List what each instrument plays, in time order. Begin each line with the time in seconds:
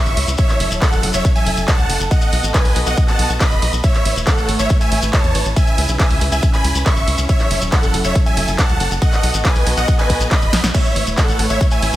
Already playing: string section C#3 C#4 E4 B4, supersaw synth E5 C#6
0.06 analog synth bass G#1, closed hi-hat, shekere
0.17 analog synth bass C#2, open hi-hat, ride
0.28 analog synth bass C#2, closed hi-hat, shekere
0.38 string section F#3 A4, supersaw synth C#5 E5, kick, closed hi-hat, ride, shekere
0.49 clap, closed hi-hat, shekere
0.60 analog synth bass F#1, open hi-hat, ride
0.71 analog synth bass E1, closed hi-hat, shekere
0.82 supersaw synth A4 F#5, kick, clap, closed hi-hat, ride, shekere
0.92 analog synth bass F#1, closed hi-hat, shekere
1.03 analog synth bass F#1, open hi-hat, ride
1.13 analog synth bass F#1, supersaw synth C#5 E5, closed hi-hat, shekere
1.25 kick, closed hi-hat, ride, shekere
1.36 supersaw synth E5 G#5, closed hi-hat, shekere
1.46 analog synth bass F#1, open hi-hat, ride
1.57 analog synth bass F#1, closed hi-hat, shekere
1.68 supersaw synth F#5 A5, kick, clap, closed hi-hat, ride, shekere
1.79 analog synth bass C#2, closed hi-hat, shekere
1.90 analog synth bass F#1, open hi-hat, ride
2.00 analog synth bass F#1, closed hi-hat, shekere
2.11 string section B3 F#4 D#5, supersaw synth D#5 F#5, kick, closed hi-hat, ride, shekere
2.21 closed hi-hat, shekere
2.33 analog synth bass B1, open hi-hat, ride
2.44 analog synth bass A1, closed hi-hat, shekere
2.54 supersaw synth B4 G#5, kick, clap, closed hi-hat, ride, shekere
2.65 analog synth bass B1, open hi-hat, shekere
2.76 analog synth bass B1, open hi-hat, ride
2.86 analog synth bass B1, supersaw synth D#5 F#5, closed hi-hat, shekere
2.97 kick, closed hi-hat, ride, shekere
3.08 supersaw synth F#5 A5, clap, closed hi-hat, shekere
3.19 analog synth bass B1, open hi-hat, ride
3.30 analog synth bass B1, closed hi-hat, shekere
3.41 supersaw synth D#5 B5, kick, clap, closed hi-hat, ride, shekere
3.51 analog synth bass F#1, closed hi-hat, shekere
3.62 analog synth bass B1, open hi-hat, ride
3.73 analog synth bass B1, closed hi-hat, shekere
3.84 string section A3 E4 B4 C#5, supersaw synth C#5 E5, kick, closed hi-hat, ride, shekere
3.95 clap, closed hi-hat, shekere
4.05 analog synth bass A1, open hi-hat, ride
4.16 analog synth bass E1, closed hi-hat, shekere
4.27 supersaw synth A4 F#5, kick, clap, closed hi-hat, ride, shekere
4.38 analog synth bass A1, closed hi-hat, shekere
4.49 analog synth bass A1, open hi-hat, ride
4.59 analog synth bass A1, supersaw synth C#5 E5, closed hi-hat, shekere
4.69 kick, closed hi-hat, ride, shekere
4.81 supersaw synth E5 G#5, closed hi-hat, shekere
4.92 analog synth bass A1, open hi-hat, ride
5.02 analog synth bass A1, closed hi-hat, shekere
5.13 supersaw synth C#5 A5, kick, clap, closed hi-hat, ride, shekere
5.24 analog synth bass E2, closed hi-hat, shekere
5.35 analog synth bass A1, open hi-hat, ride
5.46 analog synth bass A1, closed hi-hat, shekere
5.56 string section C#3 C#4, supersaw synth E5 G#5, kick, closed hi-hat, ride, shekere
5.67 closed hi-hat, shekere
5.78 analog synth bass C#2, open hi-hat, ride
5.88 analog synth bass B1, closed hi-hat, shekere
6.00 supersaw synth E5 G#5, kick, clap, closed hi-hat, ride, shekere
6.10 analog synth bass C#2, open hi-hat, shekere
6.21 analog synth bass C#2, open hi-hat, ride
6.32 analog synth bass C#2, supersaw synth E5 G#5, closed hi-hat, shekere
6.43 kick, closed hi-hat, ride, shekere
6.53 supersaw synth G#5 B5, clap, closed hi-hat, shekere
6.64 analog synth bass C#2, open hi-hat, ride
6.75 analog synth bass C#2, closed hi-hat, shekere
6.86 supersaw synth E5 C#6, kick, clap, closed hi-hat, ride, shekere
6.96 analog synth bass G#1, closed hi-hat, shekere
7.08 analog synth bass C#2, open hi-hat, ride
7.18 analog synth bass C#2, closed hi-hat, shekere
7.29 string section F#3 A4, supersaw synth C#5 E5, kick, closed hi-hat, ride, shekere
7.40 clap, closed hi-hat, shekere
7.51 analog synth bass F#1, open hi-hat, ride
7.62 analog synth bass E1, closed hi-hat, shekere
7.72 supersaw synth A4 F#5, kick, clap, closed hi-hat, ride, shekere
7.83 analog synth bass F#1, closed hi-hat, shekere
7.94 analog synth bass F#1, open hi-hat, ride
8.04 analog synth bass F#1, supersaw synth C#5 E5, closed hi-hat, shekere
8.15 kick, closed hi-hat, ride, shekere
8.26 supersaw synth E5 G#5, closed hi-hat, shekere
8.37 analog synth bass F#1, open hi-hat, ride
8.48 analog synth bass F#1, closed hi-hat, shekere
8.59 supersaw synth F#5 A5, kick, clap, closed hi-hat, ride, shekere
8.69 analog synth bass C#2, closed hi-hat, shekere
8.80 analog synth bass F#1, open hi-hat, ride
8.91 analog synth bass F#1, closed hi-hat, shekere
9.02 string section B3 F#4 D#5, supersaw synth D#5 F#5, kick, closed hi-hat, ride, shekere
9.13 clap, closed hi-hat, shekere
9.23 analog synth bass B1, open hi-hat, ride
9.34 analog synth bass A1, closed hi-hat, shekere
9.45 supersaw synth B4 G#5, kick, clap, closed hi-hat, ride, shekere
9.55 analog synth bass B1, open hi-hat, shekere
9.67 analog synth bass B1, open hi-hat, ride
9.77 analog synth bass B1, supersaw synth D#5 F#5, closed hi-hat, shekere
9.88 kick, closed hi-hat, ride, shekere
9.99 supersaw synth B4 G#5, clap, closed hi-hat, shekere
10.10 analog synth bass B1, kick, open hi-hat, ride
10.21 analog synth bass B1, closed hi-hat, shekere
10.31 supersaw synth D#5 B5, kick, clap, closed hi-hat, ride, shekere
10.42 analog synth bass F#1, closed hi-hat, shekere
10.53 analog synth bass B1, snare, open hi-hat, ride
10.64 analog synth bass B1, snare, shekere
10.74 string section A3 E4 B4 C#5, supersaw synth C#5 E5, kick, closed hi-hat, ride, crash, shekere
10.85 closed hi-hat, shekere
10.96 analog synth bass A1, open hi-hat, ride
11.07 analog synth bass E1, closed hi-hat, shekere
11.18 supersaw synth A4 F#5, kick, clap, closed hi-hat, ride, shekere
11.28 analog synth bass A1, closed hi-hat, shekere
11.39 analog synth bass A1, open hi-hat, ride
11.50 analog synth bass A1, supersaw synth C#5 E5, shekere
11.61 kick, closed hi-hat, ride, shekere
11.71 supersaw synth E5 G#5, closed hi-hat, shekere
11.82 analog synth bass A1, open hi-hat, ride